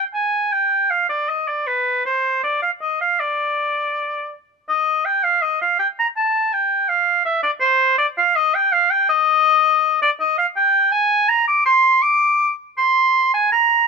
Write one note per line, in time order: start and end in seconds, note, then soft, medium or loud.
0.14 0.54 G#5 medium
0.52 0.92 G5 medium
0.90 1.09 F5 medium
1.09 1.30 D5 medium
1.29 1.49 D#5 medium
1.48 1.68 D5 medium
1.67 2.05 B4 medium
2.05 2.43 C5 medium
2.43 2.62 D5 medium
2.62 2.71 F5 medium
2.81 3.00 D#5 medium
3.01 3.21 F5 medium
3.20 4.32 D5 medium
4.69 5.07 D#5 medium
5.05 5.25 G5 medium
5.23 5.43 F5 medium
5.42 5.60 D#5 medium
5.61 5.79 F5 medium
5.79 5.87 G5 medium
5.99 6.07 A#5 medium
6.17 6.55 A5 medium
6.53 6.90 G5 medium
6.89 7.24 F5 medium
7.25 7.42 E5 medium
7.43 7.51 D5 medium
7.60 7.97 C5 medium
7.98 8.07 D5 medium
8.18 8.37 F5 medium
8.36 8.56 D#5 medium
8.55 8.74 G5 medium
8.72 8.92 F5 medium
8.90 9.08 G5 medium
9.09 10.00 D#5 medium
10.02 10.10 D5 medium
10.20 10.37 D#5 medium
10.38 10.46 F5 medium
10.56 10.93 G5 medium
10.92 11.30 G#5 medium
11.29 11.47 A#5 medium
11.47 11.65 D6 medium
11.65 12.04 C6 medium
12.02 12.51 D6 medium
12.77 13.30 C6 medium
13.34 13.52 G#5 medium
13.52 13.88 A#5 medium